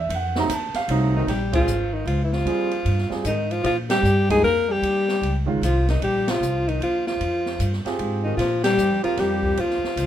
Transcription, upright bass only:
0.09 F2
0.48 D#2
0.73 muted upright bass stroke
0.88 C2
1.27 A#1
1.66 G#1
2.05 C#2
2.44 D#2
2.85 G2
3.11 muted upright bass stroke
3.24 G#2
3.64 A#2
4.03 G2
4.42 F2
4.82 D#2
5.21 C#2
5.61 C2
6.01 A#1
6.40 C2
6.80 D#2
7.20 F2
7.59 G2
7.85 muted upright bass stroke
7.99 G#2
8.37 A#2
8.77 G2
8.90 F2
9.04 D#2
9.18 F2
9.58 D#2
9.83 muted upright bass stroke
9.96 C#2

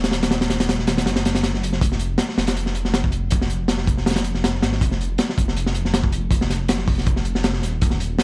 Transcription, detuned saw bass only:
Already playing: D#1
0.88 D#1
1.06 F#1
1.81 F1
2.38 F1
3.87 F1
4.63 G#1
4.81 F1
5.38 F1
6.88 F1
7.25 F1
7.62 D#1
7.82 D#1

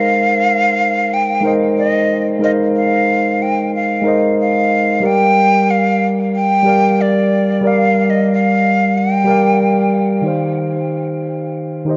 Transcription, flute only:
Already playing: F5
1.14 G5
1.78 D#5
2.44 D#5
2.77 F5
3.42 G5
3.75 F5
4.40 F5
5.06 G5
5.71 F5
6.36 G5
7.01 D5
7.67 F5
8.10 D#5
8.33 F5
8.98 G5

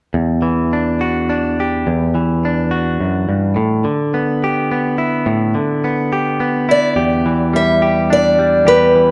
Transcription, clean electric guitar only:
0.14 E2
0.42 E3
0.73 D4
1.01 F#4
1.29 D4
1.60 G4
1.87 E2
2.15 E3
2.45 D4
2.71 F#4
3.00 F#2
3.29 G2
3.56 A2
3.84 D3
4.14 B3
4.44 G4
4.71 B3
4.98 E4
5.26 A2
5.55 D3
5.84 B3
6.13 G4
6.40 B3
6.69 E4
6.96 E2 G4
7.26 E3
7.53 G3
7.82 G4
8.10 D4
8.39 G3
8.65 E2 G4
8.95 E3

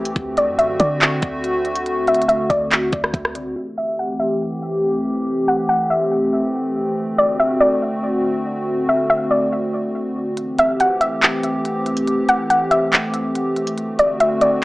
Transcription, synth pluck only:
0.38 D5
0.59 E5
0.80 D5
2.08 E5
2.28 E5
2.50 D5
3.78 E5
3.99 F#5
4.20 E5
5.48 F#5
5.69 F#5
5.90 E5
7.18 D5
7.40 E5
7.60 D5
8.89 E5
9.10 E5
9.31 D5
10.59 E5
10.80 F#5
11.01 E5
12.29 F#5
12.50 F#5
12.71 E5
13.99 D5
14.20 E5
14.41 D5

